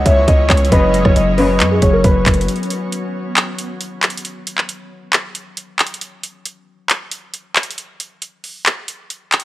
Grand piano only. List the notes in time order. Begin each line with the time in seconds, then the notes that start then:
0.06 E5
0.27 D#5
0.49 C#5
0.72 B4
1.05 C#5
1.38 B4
1.71 G#4
1.93 A#4
2.04 B4